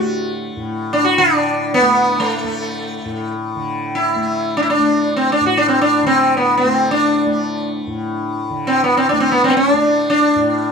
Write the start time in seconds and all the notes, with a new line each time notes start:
Already playing: A2 D3 A3 F#4
0.56 A2
0.93 D4
1.05 F#4
1.18 D3 D4
1.74 B3
1.81 A3
2.20 A3
2.44 A3
3.05 A2
3.55 D3
3.95 E4
4.16 A3
4.57 D4
4.62 E4
4.70 D4
4.79 A3
5.16 C4
5.32 D4
5.41 A2
5.46 F#4
5.57 D4
5.68 C4
5.81 D4
6.03 D3 C4
6.37 B3
6.57 C4
6.65 A3
6.91 D4
7.26 A3
7.87 A2
8.50 D3
8.67 C4
8.84 B3
8.97 C4
9.09 A3 D4
9.20 C4
9.32 B3
9.44 C4
9.48 B3 C4
9.57 D4
9.74 A3
10.10 D4
10.36 A2